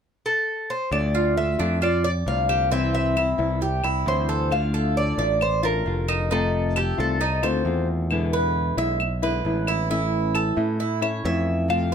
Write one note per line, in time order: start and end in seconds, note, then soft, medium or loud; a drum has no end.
0.26 0.71 A4 medium
0.70 0.92 C5 medium
0.91 1.55 D2 medium
0.91 1.35 D3 medium
0.91 1.36 A3 medium
0.91 1.36 D4 medium
0.91 1.37 F4 medium
0.91 1.34 D5 medium
0.91 claves medium
1.15 1.58 F4 medium
1.36 1.58 D3 soft
1.36 1.59 A3 soft
1.36 1.58 D4 soft
1.36 1.57 F4 soft
1.36 1.79 E5 medium
1.58 2.23 F2 medium
1.58 1.80 A3 soft
1.58 1.81 D4 medium
1.58 1.81 D4 soft
1.58 1.81 F4 medium
1.81 2.04 F4 medium
1.81 2.03 D5 medium
1.81 muted nylon-string guitar stroke medium
1.81 claves medium
2.04 2.48 D5 medium
2.04 2.11 D5 medium
2.26 3.33 C2 medium
2.26 2.70 D3 soft
2.26 2.71 A3 soft
2.26 2.71 D4 soft
2.26 2.71 F4 soft
2.26 2.69 F5 medium
2.49 2.71 G4 medium
2.49 claves medium
2.70 3.15 C3 medium
2.70 3.14 E3 medium
2.70 3.15 G3 medium
2.70 3.15 C4 medium
2.70 3.16 E4 medium
2.70 2.93 E5 medium
2.94 3.80 E5 medium
3.15 3.37 E3 soft
3.15 3.38 G3 medium
3.15 3.38 C4 medium
3.15 3.60 E4 medium
3.15 3.37 E4 medium
3.15 claves medium
3.38 3.81 C2 medium
3.38 3.60 E3 medium
3.38 3.60 G3 soft
3.38 3.60 C4 soft
3.38 3.60 E4 medium
3.61 3.83 G4 medium
3.61 muted nylon-string guitar stroke medium
3.83 4.05 C2 medium
3.83 4.28 E4 medium
3.83 claves medium
4.06 5.12 D2 medium
4.06 4.50 E3 soft
4.06 4.50 G3 soft
4.06 4.51 C4 soft
4.06 4.51 E4 soft
4.06 4.53 C5 medium
4.29 4.51 A4 medium
4.51 5.17 D3 medium
4.51 5.20 A3 medium
4.51 5.18 D4 medium
4.51 5.18 F4 medium
4.51 4.97 F5 medium
4.51 claves medium
4.74 5.17 A4 medium
4.97 5.42 D5 medium
5.18 5.82 A1 medium
5.18 5.40 A3 medium
5.18 5.40 D4 medium
5.18 5.40 F4 medium
5.18 5.62 D5 medium
5.41 5.65 C5 medium
5.41 muted nylon-string guitar stroke medium
5.41 claves medium
5.63 5.86 A3 soft
5.63 5.85 D4 medium
5.63 5.85 F4 medium
5.63 6.32 A#4 medium
5.63 6.07 A5 medium
5.85 6.92 F1 medium
5.85 6.29 D3 soft
5.85 6.30 D4 soft
5.85 6.30 F4 soft
6.08 6.30 D#4 medium
6.08 claves medium
6.30 6.97 C3 medium
6.30 6.97 D#3 medium
6.30 6.97 A3 medium
6.30 6.97 C4 medium
6.30 6.74 D#4 medium
6.30 6.96 F4 medium
6.30 6.73 A4 medium
6.76 6.97 G4 medium
6.76 7.20 A4 medium
6.76 claves medium
6.98 7.40 C2 medium
6.98 7.19 D#3 soft
6.98 7.19 A3 medium
6.98 7.20 C4 medium
6.98 7.19 F4 medium
6.98 7.85 A4 medium
7.20 7.42 D#4 medium
7.20 muted nylon-string guitar stroke medium
7.43 7.64 D2 medium
7.43 7.64 D#3 medium
7.43 7.65 A3 medium
7.43 7.65 C4 medium
7.43 7.64 F4 medium
7.43 7.87 C5 medium
7.43 claves medium
7.65 8.71 E2 medium
7.65 8.09 D#3 soft
7.65 8.10 A3 soft
7.65 8.10 C4 soft
7.65 8.10 F4 soft
8.10 8.77 B2 medium
8.10 8.77 D3 medium
8.10 8.77 G#3 medium
8.10 8.77 B3 medium
8.10 8.77 E4 medium
8.10 claves medium
8.33 8.77 B4 medium
8.77 9.41 B1 medium
8.77 9.00 D3 medium
8.77 9.00 G#3 medium
8.77 9.00 B3 medium
8.77 8.99 E4 medium
8.77 9.22 E5 medium
9.00 muted nylon-string guitar stroke medium
9.00 claves medium
9.22 9.43 D3 medium
9.22 9.44 G#3 medium
9.22 9.44 B3 medium
9.22 9.44 E4 medium
9.22 9.66 B4 medium
9.44 10.51 A1 medium
9.44 9.89 D3 soft
9.44 9.89 G#3 soft
9.44 9.90 B3 soft
9.44 9.90 E4 soft
9.67 9.90 E4 medium
9.67 claves medium
9.89 10.56 E3 medium
9.89 10.58 A3 medium
9.89 10.56 C#4 medium
9.89 10.34 E4 medium
9.89 10.55 E4 medium
10.35 10.79 A4 medium
10.35 claves medium
10.56 11.21 A2 medium
10.56 10.78 A3 soft
10.56 10.79 C#4 medium
10.56 10.79 E4 medium
10.79 11.02 E4 medium
10.79 muted nylon-string guitar stroke medium
11.02 11.23 A3 soft
11.02 11.24 C#4 medium
11.02 11.24 E4 medium
11.02 11.46 C#5 medium
11.02 claves medium
11.24 11.95 F2 medium
11.24 11.68 E3 soft
11.24 11.68 A3 soft
11.24 11.69 C#4 soft
11.24 11.69 E4 soft
11.24 11.67 E5 medium
11.68 11.95 C3 medium
11.68 11.95 F3 medium
11.68 11.95 A3 medium
11.68 11.95 C4 medium
11.68 11.95 F4 medium
11.68 11.95 F5 medium
11.68 claves medium